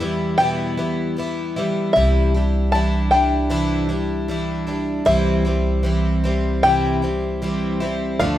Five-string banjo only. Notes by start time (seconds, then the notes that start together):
Already playing: E5
0.38 G5
1.93 E5
2.72 A5
3.11 G5
5.06 E5
6.63 G5
8.19 F5